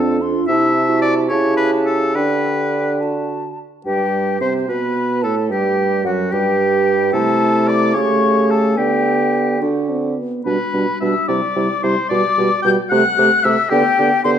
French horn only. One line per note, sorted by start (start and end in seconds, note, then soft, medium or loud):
0.00 0.23 D4 medium
0.22 0.49 F4 medium
0.49 1.30 E4 medium
1.31 2.18 E4 medium
2.16 3.45 D4 soft
3.86 4.37 G3 soft
4.41 4.67 C4 soft
4.68 5.26 B3 soft
5.24 5.53 A3 soft
5.51 6.05 G3 medium
6.06 6.35 F#3 medium
6.33 7.14 G3 medium
7.14 7.92 A3 medium
7.95 8.79 A3 medium
8.77 9.60 B3 medium
9.60 9.91 D4 medium
9.89 10.20 C4 soft
10.18 10.45 B3 soft
10.46 10.59 G3 soft
10.73 10.86 G3 soft
11.02 11.14 G3 soft
11.29 11.42 G3 soft
11.57 11.69 G3 soft
11.84 11.96 G3 soft
12.12 12.24 G3 medium
12.38 12.50 G3 medium
12.65 12.77 G3 medium
12.92 13.04 A3 medium
13.18 13.31 A3 medium
13.45 13.57 A3 medium
13.72 13.84 B3 medium
13.99 14.11 B3 medium
14.25 14.37 B3 medium